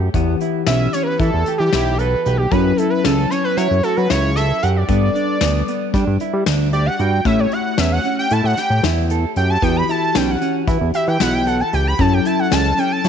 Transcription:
Already playing: A3 E4 G4 C#5
0.14 E2 E3 B3 E4 G4 F#5, kick, closed hi-hat
0.41 E4, closed hi-hat
0.67 B1 C#4 E5, snare, closed hi-hat
0.93 C#4 C#5, snare, closed hi-hat
1.03 A#4 B4
1.19 E3 E4 A4, kick, closed hi-hat
1.34 E2
1.46 G4, closed hi-hat
1.58 E3 G4
1.73 B1 E4, snare, closed hi-hat
1.98 A4 B4, closed hi-hat
2.25 B1 G4 B4, closed hi-hat
2.37 G4
2.51 F#2 F#3 C#4 E4 A4 B4, kick, closed hi-hat
2.77 E4 A4, closed hi-hat
2.90 B4
3.04 C#2 C#4 A4, snare, closed hi-hat
3.30 C#4 C#5, snare, closed hi-hat
3.44 B4
3.57 F#3 E4 C#5, snare, closed hi-hat
3.71 F#2
3.83 F#4 A4, closed hi-hat
3.96 F#3 B4
4.10 C#2 E4 C#5, snare, closed hi-hat
4.36 A4 E5, snare, closed hi-hat
4.62 F#2 G4 F#5, closed hi-hat
4.76 D5
4.88 G2 G3 B3 D4 A4 B4, kick, closed hi-hat
5.15 D4, closed hi-hat
5.41 D2 B3, snare, closed hi-hat
5.68 B3, closed hi-hat
5.94 G3 D4, kick, snare, closed hi-hat
6.07 G2
6.20 E4, closed hi-hat
6.33 G3
6.46 D2 D4, snare, closed hi-hat
6.73 G4 D5, closed hi-hat
6.86 F#5
6.99 G2 F#4 G5, closed hi-hat
7.25 A2 A3 C#4 E4 G4 C#5 E5, kick, closed hi-hat
7.40 C#5
7.52 E4 F#5, closed hi-hat
7.78 E2 C#4 E5, snare, closed hi-hat
7.92 F#5
8.04 C#4, closed hi-hat
8.19 G5
8.30 A2 E4 A5, closed hi-hat
8.44 A2 F#5
8.57 G4 G5, snare, closed hi-hat
8.70 A2
8.83 E2 E4, snare, closed hi-hat
9.10 A4, closed hi-hat
9.36 F#2 G4 G5, closed hi-hat
9.50 A5
9.62 E2 E3 B3 E4 F#4 G4 G5, kick, closed hi-hat
9.76 B5
9.89 E4 A5, closed hi-hat
10.15 B1 C#4 G5, snare, closed hi-hat
10.30 F#5
10.42 C#4, closed hi-hat
10.68 E3 E4, kick, closed hi-hat
10.81 E2
10.94 G4 E5, closed hi-hat
11.08 E3 G5
11.20 B1 E4 F#5, snare, closed hi-hat
11.34 G5
11.47 A4 F#5, closed hi-hat
11.60 A5
11.73 C#2 G4 G5, closed hi-hat
11.87 B5
11.99 F#2 F#3 C#4 E4 A4 A5, kick, closed hi-hat
12.13 G5
12.25 E4 A5, closed hi-hat
12.39 F#5
12.52 C#2 C#4 A5, snare, closed hi-hat
12.78 C#4 G5, closed hi-hat
12.92 A5
13.04 F#3 E4, snare, closed hi-hat

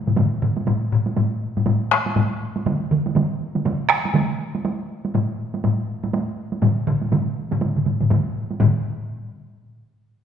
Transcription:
0.07 taiko low-mid, taiko mid, taiko high
0.16 taiko low-mid, taiko mid, taiko high
0.42 taiko low-mid, taiko mid
0.57 taiko high
0.67 taiko low-mid, taiko high
0.92 taiko low-mid
1.06 taiko high
1.16 taiko low-mid, taiko high
1.57 taiko low-mid, taiko high
1.66 taiko low-mid, taiko high
1.91 taiko rim
2.06 taiko high
2.16 taiko low-mid, taiko high
2.56 taiko high
2.66 taiko mid, taiko high
2.91 taiko mid
3.06 taiko high
3.15 taiko mid, taiko high
3.55 taiko mid, taiko high
3.65 taiko mid, taiko high
3.90 taiko rim
4.05 taiko high
4.14 taiko mid, taiko high
4.55 taiko high
4.65 taiko high
5.05 taiko high
5.14 taiko low-mid, taiko high
5.54 taiko high
5.64 taiko low-mid, taiko high
6.03 taiko low-mid, taiko high
6.13 taiko high
6.52 taiko high
6.62 taiko low-mid, taiko mid, taiko high
6.87 taiko low-mid, taiko mid
7.02 taiko high
7.12 taiko low-mid, taiko mid, taiko high
7.51 taiko low-mid, taiko mid, taiko high
7.61 taiko low-mid, taiko mid, taiko high
7.76 taiko low-mid, taiko mid
7.86 taiko low-mid, taiko mid, taiko high
8.00 taiko low-mid, taiko mid, taiko high
8.10 taiko low-mid, taiko mid, taiko high
8.51 taiko high
8.60 taiko low-mid, taiko mid, taiko high

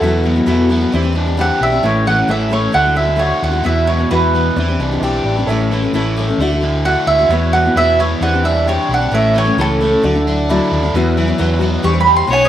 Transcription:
Already playing: E4 A4
0.01 E2 B2 F#3 B3 E4 F#4 B4 E5
0.23 B2 F#3 B3 E4 F#4
0.36 F#3 B3 E4 F#4
0.46 E2 B2 E3 F#3 B3 E4 F#4 B4 E5
0.69 F#3 B3 E4 F#4
0.81 F#3 B3 E4 F#4
0.92 E2 E3 C4 D4 G4 C5 D5 E5
1.02 C4 D4 G4
1.13 E3 C4 D4 G4
1.26 C4 D4 G4
1.37 E3 C4 D4 G4 C5 D5 E5 F#5
1.61 B1 D4 E5
1.72 C4 D4 G4
1.83 A1 A2 E3 A3 C#4 A4 C#5 E5
2.06 E3 A3 C#4 A4 F#5
2.16 A3 C#4 A4
2.28 A1 A2 E3 A3 C#4 A4 C#5 E5
2.49 E3 A3 C#4 A4 C#5
2.71 D2 D3 A3 E4 F#4 D5 E5 F#5
2.83 A3 E4 F#4
2.95 D3 A3 E4 F#4 E5
3.04 A3 E4 F#4
3.16 D3 A3 E4 F#4 C#5
3.20 F#4 D5 E5
3.42 D#2 E4 F#5
3.51 A3 E4 F#4
3.63 E2 B2 E3 B3 E4 F#4 B4 E5
3.86 B2 E3 B3 E4 F#4 C#5
3.98 E3 B3 E4 F#4
4.10 E2 B2 E3 B3 E4 F#4 B4 E5
4.34 E3 B3 E4 F#4
4.56 E2 E3 C4 D4 E4 G4 D5
4.68 C4 D4 G4
4.79 C2 E3 C4 D4 G4
4.92 C4 D4 G4
5.00 B1 E3 C4 D4 E4 G4 D5
5.24 A1 D4
5.37 C4 D4 G4
5.46 A1 A2 E3 A3 C#4 A4 C#5 E5
5.71 E3 A3 C#4 A4
5.82 A3 C#4 A4
5.93 A1 A2 E3 A3 C#4 A4 C#5 E5
6.17 E3 A3 C#4 A4
6.28 A3 C#4 A4
6.38 D2 D3 A3 E4 F#4 D5 E5
6.42 F#4
6.51 A3 E4 F#4
6.61 D3 A3 E4 F#4
6.85 D3 A3 E4 F#4 D5 E5 F#5
7.07 D2 E4 E5
7.19 A3 E4 F#4
7.29 E2 B2 E3 B3 E4 F#4 B4 C#5 E5
7.53 B2 E3 B3 E4 F#4 F#5
7.66 E3 B3 E4 F#4
7.75 E2 B2 E3 B3 E4 F#4 B4 E5
7.99 E3 B3 E4 F#4 C#5
8.21 E2 E3 C4 D4 E4 G4 C5 D5 F#5
8.33 C4 D4 G4
8.43 E3 C4 D4 G4 E5
8.66 E3 C4 D4 E4 G4 C5 C#5 D5
8.89 B1 D4
8.94 F#5
9.01 C4 D4 G4
9.11 A1 A2 E3 A3 C#4 E4 A4 C#5 E5
9.34 E3 A3 C#4 A4
9.38 C#5
9.45 A3 C#4 A4
9.57 C#2 A2 E3 A3 C#4 E4 A4 C#5
9.61 A4
9.81 E3 A3 C#4 A4
9.91 A3 C#4 A4
10.02 D2 D3 F#3 A3 D4 E4 F#4 D5
10.13 A3 D4 E4
10.27 F#3 A3 D4 E4
10.49 D3 F#3 A3 D4 E4 F#4 D5
10.71 D#2 D4
10.83 A3 D4 E4
10.94 E2 E3 F#3 B3 E4 F#4 B4
11.17 E3 F#3 B3 E4 F#4
11.27 F#3 B3 E4 F#4
11.38 E2 E3 F#3 B3 E4 F#4 B4
11.59 F#3 B3 E4 F#4
11.82 E2 D3 E3 G3 D4 E4 G4 C5 C#6
11.87 C5
11.93 G3 G4 C5
12.00 D3 B5
12.05 G3 G4 C5
12.15 G3 G4 C5 C6
12.27 B1 B3 D#4 F#4 C#5
12.32 C#4 D#4 B4 G#5
12.45 B4 D#5

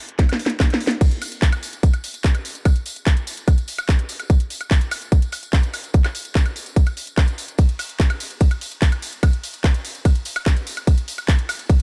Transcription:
0.09 closed hi-hat
0.19 kick, snare, closed hi-hat
0.29 snare, closed hi-hat, high woodblock
0.39 open hi-hat
0.46 snare, closed hi-hat
0.60 kick, snare, clap, closed hi-hat, high woodblock
0.70 snare, closed hi-hat
0.80 open hi-hat
0.87 snare, closed hi-hat
1.01 kick, closed hi-hat, crash, tambourine
1.11 closed hi-hat, tambourine
1.22 open hi-hat, tambourine, high woodblock
1.32 closed hi-hat, tambourine
1.42 kick, clap, closed hi-hat, tambourine
1.52 closed hi-hat, tambourine, high woodblock
1.63 open hi-hat, tambourine
1.73 closed hi-hat, tambourine
1.83 kick, closed hi-hat, tambourine
1.93 closed hi-hat, tambourine, high woodblock
2.04 open hi-hat, tambourine
2.14 closed hi-hat, tambourine
2.23 kick, clap, closed hi-hat, tambourine
2.34 closed hi-hat, tambourine, high woodblock
2.45 open hi-hat, tambourine
2.55 closed hi-hat, tambourine
2.65 kick, closed hi-hat, tambourine, high woodblock
2.75 closed hi-hat, tambourine
2.86 open hi-hat, tambourine
2.96 closed hi-hat, tambourine
3.06 kick, clap, closed hi-hat, tambourine, high woodblock
3.17 closed hi-hat, tambourine
3.27 open hi-hat, tambourine
3.37 closed hi-hat, tambourine
3.48 kick, closed hi-hat, tambourine, high woodblock
3.58 closed hi-hat, tambourine
3.68 open hi-hat, tambourine
3.78 closed hi-hat, tambourine, high woodblock
3.88 kick, clap, closed hi-hat, tambourine
3.98 closed hi-hat, tambourine
4.09 open hi-hat, tambourine
4.20 closed hi-hat, tambourine, high woodblock
4.30 kick, closed hi-hat, tambourine
4.40 closed hi-hat, tambourine
4.50 open hi-hat, tambourine
4.61 closed hi-hat, tambourine, high woodblock
4.71 kick, clap, closed hi-hat, tambourine
4.81 closed hi-hat, tambourine
4.91 open hi-hat, tambourine, high woodblock
5.02 closed hi-hat, tambourine
5.12 kick, closed hi-hat, tambourine
5.22 closed hi-hat, tambourine
5.32 open hi-hat, tambourine, high woodblock
5.43 closed hi-hat, tambourine
5.53 kick, clap, closed hi-hat, tambourine
5.63 closed hi-hat, tambourine
5.73 open hi-hat, tambourine, high woodblock
5.84 closed hi-hat, tambourine
5.94 kick, closed hi-hat, tambourine
6.04 clap, closed hi-hat, tambourine, high woodblock
6.15 open hi-hat, tambourine
6.25 closed hi-hat, tambourine
6.35 kick, clap, closed hi-hat, tambourine
6.46 closed hi-hat, tambourine, high woodblock
6.56 open hi-hat, tambourine
6.66 closed hi-hat, tambourine
6.76 kick, closed hi-hat, tambourine
6.86 closed hi-hat, tambourine, high woodblock
6.97 open hi-hat, tambourine
7.07 closed hi-hat, tambourine
7.17 kick, clap, closed hi-hat, tambourine, high woodblock
7.28 closed hi-hat, tambourine
7.38 open hi-hat, tambourine
7.48 closed hi-hat, tambourine
7.58 kick, closed hi-hat, ride, tambourine
7.69 closed hi-hat, tambourine
7.79 open hi-hat, ride, tambourine, high woodblock
7.89 closed hi-hat, tambourine
8.00 kick, clap, closed hi-hat, ride, tambourine
8.10 closed hi-hat, tambourine, high woodblock
8.20 open hi-hat, ride, tambourine
8.31 closed hi-hat, tambourine
8.40 kick, closed hi-hat, ride, tambourine
8.51 closed hi-hat, tambourine, high woodblock
8.61 open hi-hat, ride, tambourine
8.71 closed hi-hat, tambourine
8.82 kick, clap, closed hi-hat, ride, tambourine
8.92 closed hi-hat, tambourine, high woodblock
9.02 open hi-hat, ride, tambourine
9.12 closed hi-hat, tambourine
9.23 kick, closed hi-hat, ride, tambourine, high woodblock
9.33 closed hi-hat, tambourine
9.44 open hi-hat, ride, tambourine
9.53 closed hi-hat, tambourine
9.64 kick, clap, closed hi-hat, ride, tambourine, high woodblock
9.74 closed hi-hat, tambourine
9.85 open hi-hat, ride, tambourine
9.95 closed hi-hat, tambourine
10.05 kick, closed hi-hat, ride, tambourine, high woodblock
10.15 closed hi-hat, tambourine
10.25 open hi-hat, ride, tambourine
10.36 closed hi-hat, tambourine, high woodblock
10.46 kick, clap, closed hi-hat, ride, tambourine
10.56 closed hi-hat, tambourine
10.67 open hi-hat, ride, tambourine
10.77 closed hi-hat, tambourine, high woodblock
10.87 kick, closed hi-hat, ride, tambourine
10.98 closed hi-hat, tambourine
11.08 open hi-hat, ride, tambourine
11.18 closed hi-hat, tambourine, high woodblock
11.28 kick, clap, closed hi-hat, ride, tambourine
11.38 closed hi-hat, tambourine
11.49 open hi-hat, ride, tambourine, high woodblock
11.59 closed hi-hat, tambourine
11.69 kick, closed hi-hat, ride, tambourine

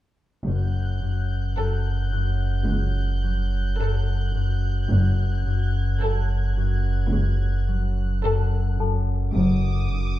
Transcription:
0.46 F#1 F#2 F#6 G6
1.02 F#2
1.57 F#2 A4
2.13 F#2 F#6
2.68 C#2 F#2
3.23 F#3
3.79 F#2 A4
4.35 F#2
4.90 F#1 F#2
5.46 F#2
5.85 G#6
6.02 F#2 A4
6.57 F#2
7.13 C#2 F#2
7.68 F#3
8.24 F#2 A4
8.80 F#2 A4 A5
9.35 F#1 F#2 D6 D#6
9.91 F#2

